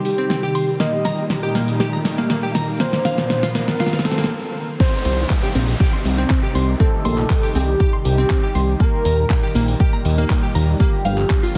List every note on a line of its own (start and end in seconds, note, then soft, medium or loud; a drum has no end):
0.00 0.76 C3 medium
0.00 2.76 D#3 medium
0.00 0.76 G3 medium
0.00 0.76 D#4 medium
0.00 4.26 G4 medium
0.00 riser medium
0.05 0.70 G4 loud
0.05 open hi-hat loud
0.18 0.28 C4 medium
0.30 0.41 C4 medium
0.30 snare medium
0.43 0.47 G4 loud
0.55 0.66 C6 loud
0.55 open hi-hat loud
0.80 2.78 A#2 medium
0.80 4.27 G3 medium
0.80 0.88 A#3 medium
0.80 2.78 D#4 medium
0.80 1.25 D#5 loud
0.80 snare medium
1.05 1.16 A#5 loud
1.05 snare medium
1.05 open hi-hat loud
1.30 snare medium
1.43 1.47 G4 loud
1.55 1.63 A#3 medium
1.55 snare medium
1.55 open hi-hat loud
1.68 open hi-hat medium
1.80 1.91 G4 medium
1.80 snare medium
1.93 1.97 A#5 medium
2.05 snare medium
2.05 open hi-hat loud
2.18 2.28 A#3 medium
2.30 2.41 A#3 medium
2.30 snare medium
2.43 2.47 G4 loud
2.55 2.66 A#5 loud
2.55 snare medium
2.55 open hi-hat loud
2.80 4.29 A#2 medium
2.80 4.29 F3 medium
2.80 2.88 A#3 medium
2.80 4.29 D4 medium
2.80 3.45 C5 loud
2.80 snare medium
2.93 snare medium
3.05 3.16 F5 loud
3.05 snare medium
3.05 open hi-hat loud
3.18 snare medium
3.30 snare loud
3.43 3.47 F4 loud
3.43 snare medium
3.43 open hi-hat medium
3.55 3.63 A#3 medium
3.55 4.00 A#4 loud
3.55 snare loud
3.55 open hi-hat loud
3.68 snare medium
3.80 3.91 F4 loud
3.80 snare loud
3.87 snare medium
3.93 3.97 F5 medium
3.93 snare medium
3.99 snare medium
4.05 4.30 A4 loud
4.05 snare loud
4.05 open hi-hat loud
4.12 snare medium
4.18 4.28 A#3 medium
4.18 snare medium
4.24 snare medium
4.80 8.76 C3 medium
4.80 10.76 D#3 medium
4.80 11.58 G3 medium
4.80 4.88 C4 medium
4.80 10.76 D#4 medium
4.80 10.76 G4 medium
4.80 5.25 C5 loud
4.80 kick loud
4.80 crash loud
4.80 downlifter medium
5.05 5.25 C2 loud
5.05 5.16 C6 loud
5.05 open hi-hat loud
5.30 kick loud
5.30 clap loud
5.43 5.47 G4 loud
5.55 5.75 A#1 loud
5.55 5.63 C4 medium
5.55 open hi-hat loud
5.68 open hi-hat medium
5.80 5.91 G4 loud
5.80 kick loud
5.93 5.97 C6 medium
6.05 6.25 C2 medium
6.05 open hi-hat loud
6.18 6.28 C4 medium
6.30 6.41 C4 medium
6.30 kick loud
6.30 clap loud
6.43 6.47 G4 loud
6.55 6.75 C2 medium
6.55 6.66 C6 loud
6.55 open hi-hat loud
6.80 6.88 C4 medium
6.80 7.57 A4 loud
6.80 kick loud
7.05 7.25 A#1 medium
7.05 7.16 C6 loud
7.05 open hi-hat loud
7.18 clap soft
7.30 kick loud
7.30 clap loud
7.43 7.47 G4 loud
7.43 open hi-hat medium
7.55 7.75 C2 loud
7.55 7.63 C4 medium
7.55 8.00 G4 loud
7.55 open hi-hat loud
7.80 7.91 G4 loud
7.80 kick loud
7.93 7.97 C6 medium
8.05 8.25 C2 medium
8.05 8.82 G4 loud
8.05 open hi-hat loud
8.18 8.28 C4 medium
8.30 8.41 C4 medium
8.30 kick loud
8.30 clap loud
8.43 8.47 G4 loud
8.55 8.75 C2 medium
8.55 8.66 C6 loud
8.55 open hi-hat loud
8.80 10.78 A#2 medium
8.80 8.88 A#3 medium
8.80 9.25 A#4 loud
8.80 kick loud
9.05 9.25 D#2 medium
9.05 9.16 A#5 loud
9.05 open hi-hat loud
9.30 kick loud
9.30 clap loud
9.43 9.47 G4 loud
9.55 9.75 A#1 loud
9.55 9.63 A#3 medium
9.55 open hi-hat loud
9.68 open hi-hat medium
9.80 9.91 G4 loud
9.80 kick loud
9.93 9.97 A#5 medium
10.05 10.25 D#2 loud
10.05 open hi-hat loud
10.18 10.28 A#3 medium
10.30 10.41 A#3 medium
10.30 kick loud
10.30 clap loud
10.43 10.47 G4 loud
10.55 10.75 D#2 medium
10.55 10.66 A#5 loud
10.55 open hi-hat loud
10.80 11.58 D3 medium
10.80 11.58 F3 medium
10.80 10.88 A#3 medium
10.80 11.58 A#3 medium
10.80 11.58 F4 loud
10.80 11.45 G4 medium
10.80 11.46 G4 loud
10.80 kick loud
11.05 11.25 G1 medium
11.05 11.16 F5 loud
11.05 open hi-hat loud
11.18 clap soft
11.30 kick loud
11.30 clap loud
11.43 11.47 F4 loud
11.43 open hi-hat medium